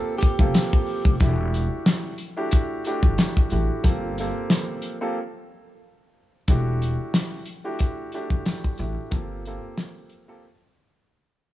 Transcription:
0.00 0.34 A#3 medium
0.00 0.34 C4 medium
0.00 0.34 F4 medium
0.00 0.34 G4 medium
0.00 0.17 A4 medium
0.00 0.34 A4 loud
0.18 1.15 G4 medium
0.18 closed hi-hat medium
0.23 kick loud
0.39 0.53 F1 medium
0.39 1.15 A#3 medium
0.39 1.15 C4 medium
0.39 1.15 F4 medium
0.39 1.15 G4 medium
0.39 1.15 A4 loud
0.39 kick loud
0.54 snare loud
0.54 closed hi-hat medium
0.73 kick medium
0.86 open hi-hat soft
1.05 1.19 F1 medium
1.05 kick loud
1.20 1.66 E1 loud
1.20 2.13 A3 loud
1.20 2.13 D4 medium
1.20 2.13 E4 medium
1.20 2.13 F#4 medium
1.20 2.13 G4 loud
1.20 kick loud
1.20 closed hi-hat loud
1.54 closed hi-hat medium
1.86 snare loud
1.86 closed hi-hat loud
2.18 closed hi-hat medium
2.37 2.82 A3 medium
2.37 2.82 D4 medium
2.37 2.82 E4 medium
2.37 2.82 F#4 medium
2.37 2.82 G4 loud
2.51 kick loud
2.51 closed hi-hat medium
2.85 3.47 A3 loud
2.85 3.47 D4 medium
2.85 3.47 E4 medium
2.85 3.47 F#4 medium
2.85 3.48 G4 loud
2.85 closed hi-hat medium
3.03 3.16 G1 medium
3.03 kick loud
3.18 snare loud
3.18 closed hi-hat loud
3.37 kick loud
3.50 3.67 A1 medium
3.50 3.82 A3 medium
3.50 3.82 D4 medium
3.50 3.82 E4 medium
3.50 3.82 F#4 medium
3.50 3.82 G4 medium
3.50 closed hi-hat medium
3.84 4.29 G1 loud
3.84 4.15 A#3 loud
3.84 4.15 C4 medium
3.84 4.15 F4 medium
3.84 4.15 G4 medium
3.84 4.15 A4 loud
3.84 kick loud
3.84 closed hi-hat loud
4.18 4.95 A#3 loud
4.18 4.95 C4 medium
4.18 4.95 F4 medium
4.18 4.96 G4 medium
4.18 4.96 A4 medium
4.18 closed hi-hat medium
4.50 snare loud
4.50 closed hi-hat loud
4.82 closed hi-hat medium
5.01 5.16 A#3 loud
5.01 5.16 C4 medium
5.01 5.16 F4 medium
5.01 5.17 G4 medium
5.01 5.17 A4 loud
6.48 6.93 E1 loud
6.48 7.40 A3 medium
6.48 7.40 D4 medium
6.48 7.40 E4 medium
6.48 7.41 F#4 medium
6.48 7.41 G4 loud
6.48 kick loud
6.48 closed hi-hat medium
6.82 closed hi-hat medium
7.14 snare loud
7.14 closed hi-hat medium
7.46 closed hi-hat medium
7.64 8.09 A3 medium
7.64 8.09 D4 medium
7.64 8.09 E4 medium
7.64 8.09 F#4 medium
7.64 8.10 G4 loud
7.79 kick loud
7.79 closed hi-hat medium
8.12 8.75 A3 loud
8.12 8.75 D4 loud
8.12 8.75 E4 medium
8.12 8.75 F#4 medium
8.12 8.75 G4 loud
8.12 closed hi-hat medium
8.30 8.44 G1 medium
8.30 kick loud
8.46 snare loud
8.46 closed hi-hat medium
8.64 kick medium
8.78 8.95 A1 loud
8.78 9.09 A3 medium
8.78 9.10 D4 medium
8.78 9.10 E4 medium
8.78 9.10 F#4 medium
8.78 9.10 G4 medium
8.78 closed hi-hat medium
9.11 9.57 G1 loud
9.11 9.42 A#3 medium
9.11 9.42 C4 medium
9.11 9.42 F4 medium
9.11 9.42 G4 medium
9.11 9.42 A4 loud
9.11 kick loud
9.11 closed hi-hat medium
9.45 10.23 A#3 medium
9.45 10.23 C4 medium
9.45 10.23 F4 medium
9.45 10.23 G4 medium
9.45 10.23 A4 medium
9.45 closed hi-hat medium
9.78 snare loud
9.78 closed hi-hat loud
10.09 closed hi-hat medium
10.28 10.44 A#3 medium
10.28 10.44 C4 medium
10.28 10.44 F4 medium
10.28 10.44 G4 medium
10.28 10.44 A4 loud

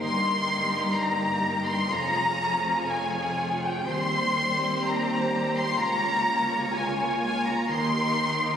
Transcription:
0.00 1.89 G1 medium
0.00 1.89 G2 medium
0.00 1.90 A#3 soft
0.00 1.90 D#4 soft
0.00 1.90 G4 soft
0.00 1.89 A#4 medium
0.00 0.92 C6 medium
0.96 1.69 A#5 medium
1.68 1.92 C6 medium
1.91 3.88 F1 medium
1.91 3.89 F2 soft
1.91 3.85 F3 medium
1.91 3.89 F4 soft
1.91 3.84 G#4 medium
1.91 3.84 C#5 medium
1.91 2.88 A#5 medium
2.88 3.64 G#5 medium
3.64 3.89 G5 medium
3.88 5.75 D#2 medium
3.88 5.79 G3 medium
3.88 5.75 C4 medium
3.88 6.74 G4 medium
3.88 5.75 C5 medium
3.88 4.85 C6 medium
4.85 5.56 A#5 medium
5.55 5.79 C6 medium
5.78 7.71 C#2 medium
5.78 8.57 A#3 medium
5.78 7.72 F4 medium
5.78 7.71 C#5 medium
5.78 6.74 A#5 medium
6.74 7.71 F4 medium
6.74 7.22 G#5 medium
7.23 7.47 G#5 medium
7.47 7.72 A#5 medium
7.70 8.57 D#2 medium
7.70 8.57 D#4 medium
7.70 8.57 G4 medium
7.70 8.57 A#4 medium
7.70 8.57 C6 medium

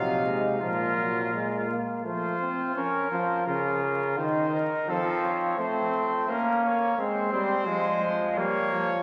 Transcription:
0.00 0.60 C3 medium
0.00 0.25 F#3 medium
0.00 0.60 D#4 medium
0.00 0.59 F5 loud
0.26 0.60 G#3 medium
0.61 1.74 A#2 medium
0.61 0.96 F3 medium
0.61 1.74 F4 medium
0.61 1.74 A#4 medium
0.98 1.33 F#3 medium
1.34 1.71 G#3 medium
1.69 2.06 A#3 medium
2.04 2.73 F3 medium
2.04 2.39 A3 medium
2.04 2.73 F4 medium
2.04 2.72 C5 medium
2.40 2.75 C4 medium
2.75 3.09 C#4 medium
2.75 3.44 A#4 medium
2.75 3.09 C#5 medium
3.11 3.46 F3 medium
3.11 3.46 C5 medium
3.47 4.19 C#3 medium
3.47 4.17 F4 medium
3.47 3.82 A#4 medium
3.83 4.17 A#4 medium
4.18 4.71 D#3 medium
4.18 4.90 D#4 medium
4.18 4.53 C5 medium
4.55 4.89 A#4 medium
4.88 5.57 F3 loud
4.88 5.58 C4 medium
4.88 5.23 A4 medium
5.24 5.61 C#5 medium
5.58 6.27 A3 medium
5.58 6.31 C4 medium
5.58 6.31 C5 medium
6.28 6.97 A#3 loud
6.28 6.97 C#4 medium
6.28 6.64 A#4 medium
6.66 6.99 C#5 medium
6.98 7.32 G#3 medium
6.98 7.32 C4 medium
6.98 8.21 C5 loud
7.32 7.69 G3 medium
7.32 7.66 C4 medium
7.67 8.01 F3 medium
7.67 8.39 G#3 loud
8.02 8.39 F3 medium
8.38 8.71 G3 medium
8.38 8.91 A#3 medium
8.38 9.03 C#5 loud
8.72 9.03 F3 medium

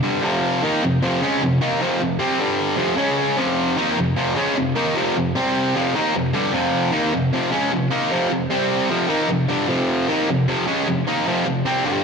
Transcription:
0.03 0.22 G2 medium
0.03 0.23 D3 medium
0.03 0.23 G3 medium
0.22 0.62 F2 medium
0.22 0.62 C3 medium
0.22 0.63 F3 loud
0.63 0.82 D#3 medium
0.63 0.83 A#3 medium
0.63 0.83 D#4 loud
0.83 0.99 F2 medium
0.83 0.99 C3 medium
1.02 1.22 F2 medium
1.02 1.21 C3 medium
1.02 1.22 F3 loud
1.22 1.41 C#3 loud
1.22 1.42 G#3 medium
1.22 1.42 C#4 loud
1.42 1.58 F2 medium
1.42 1.58 C3 medium
1.61 1.81 D#3 medium
1.61 1.81 A#3 medium
1.61 1.81 D#4 loud
1.81 1.99 F2 medium
1.81 1.99 C3 medium
1.81 2.01 F3 loud
2.00 2.16 F2 medium
2.00 2.17 C3 medium
2.19 2.39 C3 medium
2.19 2.39 G3 loud
2.19 2.40 C4 loud
2.39 2.77 G2 loud
2.39 2.78 D3 loud
2.39 2.78 G3 loud
2.77 2.98 F2 medium
2.77 2.97 C3 loud
2.77 2.98 F3 medium
2.97 3.37 C#3 loud
2.97 3.37 G#3 medium
2.97 3.38 C#4 loud
3.37 3.77 F2 medium
3.37 3.77 C3 loud
3.37 3.77 F3 medium
3.77 3.97 D#3 medium
3.77 3.97 A#3 loud
3.77 3.98 D#4 loud
3.96 4.13 F2 medium
3.96 4.13 C3 medium
4.16 4.36 F2 medium
4.16 4.35 C3 medium
4.16 4.36 F3 loud
4.36 4.56 C#3 medium
4.36 4.56 G#3 medium
4.36 4.57 C#4 medium
4.56 4.72 F2 medium
4.56 4.73 C3 medium
4.76 4.95 D#3 medium
4.76 4.96 A#3 medium
4.76 4.96 D#4 loud
4.95 5.15 F2 loud
4.95 5.16 C3 loud
4.95 5.16 F3 loud
5.17 5.32 F2 medium
5.17 5.32 C3 medium
5.35 5.74 C3 medium
5.35 5.75 G3 loud
5.35 5.75 C4 loud
5.75 5.94 F2 medium
5.75 5.95 C3 loud
5.75 5.95 F3 medium
5.95 6.14 D#3 medium
5.95 6.15 A#3 medium
5.95 6.15 D#4 medium
6.15 6.30 F2 medium
6.15 6.31 C3 medium
6.33 6.52 G2 medium
6.33 6.53 D3 medium
6.33 6.54 G3 medium
6.53 6.92 F2 loud
6.53 6.92 C3 medium
6.53 6.92 F3 loud
6.92 7.12 D#3 medium
6.92 7.12 A#3 loud
6.92 7.12 D#4 loud
7.13 7.29 F2 medium
7.13 7.29 C3 medium
7.33 7.52 F2 medium
7.33 7.51 C3 medium
7.33 7.51 F3 loud
7.51 7.71 C#3 medium
7.51 7.71 G#3 medium
7.51 7.72 C#4 loud
7.72 7.88 F2 medium
7.72 7.88 C3 medium
7.91 8.11 D#3 medium
7.91 8.11 A#3 loud
7.91 8.11 D#4 medium
8.11 8.29 F2 loud
8.11 8.29 C3 medium
8.11 8.31 F3 medium
8.30 8.46 F2 medium
8.30 8.47 C3 medium
8.50 8.89 C3 medium
8.50 8.90 G3 loud
8.50 8.90 C4 loud
8.89 9.09 F2 medium
8.89 9.08 C3 medium
8.89 9.09 F3 loud
9.08 9.28 D#3 medium
9.08 9.29 A#3 loud
9.08 9.29 D#4 loud
9.29 9.45 F2 medium
9.29 9.46 C3 medium
9.49 9.68 G2 loud
9.49 9.69 D3 medium
9.49 9.69 G3 loud
9.68 10.08 F2 loud
9.68 10.07 C3 loud
9.68 10.08 F3 loud
10.08 10.27 D#3 loud
10.08 10.28 A#3 loud
10.08 10.28 D#4 loud
10.28 10.44 F2 medium
10.28 10.45 C3 medium
10.48 10.67 F2 medium
10.48 10.67 C3 medium
10.48 10.67 F3 medium
10.67 10.87 C#3 loud
10.67 10.87 G#3 loud
10.67 10.87 C#4 loud
10.87 11.03 F2 medium
10.87 11.03 C3 medium
11.07 11.27 D#3 medium
11.07 11.27 A#3 medium
11.07 11.27 D#4 loud
11.27 11.45 F2 medium
11.27 11.45 C3 loud
11.27 11.47 F3 medium
11.46 11.62 F2 medium
11.46 11.62 C3 medium
11.66 11.86 C3 medium
11.66 11.85 G3 loud
11.66 11.86 C4 loud
11.85 12.04 G2 medium
11.85 12.04 D3 medium
11.85 12.04 G3 medium

